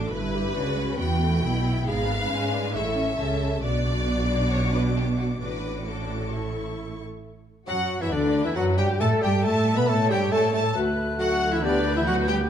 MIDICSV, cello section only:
0, 0, Header, 1, 2, 480
1, 0, Start_track
1, 0, Tempo, 440205
1, 120, Time_signature, 4, 2, 24, 8
1, 4918, Tempo, 451128
1, 8758, Tempo, 439239
1, 13541, End_track
2, 0, Start_track
2, 0, Title_t, "Cello section"
2, 0, Program_c, 0, 48
2, 0, Note_on_c, 0, 45, 63
2, 110, Note_off_c, 0, 45, 0
2, 125, Note_on_c, 0, 43, 76
2, 593, Note_off_c, 0, 43, 0
2, 604, Note_on_c, 0, 49, 68
2, 1078, Note_off_c, 0, 49, 0
2, 1083, Note_on_c, 0, 52, 79
2, 1552, Note_off_c, 0, 52, 0
2, 1558, Note_on_c, 0, 47, 79
2, 2037, Note_off_c, 0, 47, 0
2, 2038, Note_on_c, 0, 44, 82
2, 2505, Note_off_c, 0, 44, 0
2, 2514, Note_on_c, 0, 56, 73
2, 2985, Note_off_c, 0, 56, 0
2, 2994, Note_on_c, 0, 45, 80
2, 3474, Note_off_c, 0, 45, 0
2, 3477, Note_on_c, 0, 49, 68
2, 3948, Note_off_c, 0, 49, 0
2, 3958, Note_on_c, 0, 47, 81
2, 5831, Note_off_c, 0, 47, 0
2, 5875, Note_on_c, 0, 45, 65
2, 7597, Note_off_c, 0, 45, 0
2, 8289, Note_on_c, 0, 54, 74
2, 8616, Note_off_c, 0, 54, 0
2, 8644, Note_on_c, 0, 52, 73
2, 8757, Note_off_c, 0, 52, 0
2, 8766, Note_on_c, 0, 50, 73
2, 9117, Note_off_c, 0, 50, 0
2, 9124, Note_on_c, 0, 52, 65
2, 9242, Note_on_c, 0, 54, 78
2, 9243, Note_off_c, 0, 52, 0
2, 9483, Note_off_c, 0, 54, 0
2, 9485, Note_on_c, 0, 55, 81
2, 9724, Note_off_c, 0, 55, 0
2, 9724, Note_on_c, 0, 57, 98
2, 9963, Note_off_c, 0, 57, 0
2, 9966, Note_on_c, 0, 55, 87
2, 10204, Note_off_c, 0, 55, 0
2, 10208, Note_on_c, 0, 57, 85
2, 10564, Note_on_c, 0, 59, 80
2, 10567, Note_off_c, 0, 57, 0
2, 10684, Note_off_c, 0, 59, 0
2, 10686, Note_on_c, 0, 57, 91
2, 10924, Note_off_c, 0, 57, 0
2, 10932, Note_on_c, 0, 55, 83
2, 11166, Note_off_c, 0, 55, 0
2, 11170, Note_on_c, 0, 57, 90
2, 11393, Note_off_c, 0, 57, 0
2, 11406, Note_on_c, 0, 57, 78
2, 11494, Note_off_c, 0, 57, 0
2, 12119, Note_on_c, 0, 54, 77
2, 12453, Note_off_c, 0, 54, 0
2, 12483, Note_on_c, 0, 52, 84
2, 12599, Note_on_c, 0, 50, 88
2, 12600, Note_off_c, 0, 52, 0
2, 12958, Note_off_c, 0, 50, 0
2, 12958, Note_on_c, 0, 52, 77
2, 13075, Note_off_c, 0, 52, 0
2, 13075, Note_on_c, 0, 54, 85
2, 13316, Note_off_c, 0, 54, 0
2, 13317, Note_on_c, 0, 55, 83
2, 13404, Note_off_c, 0, 55, 0
2, 13541, End_track
0, 0, End_of_file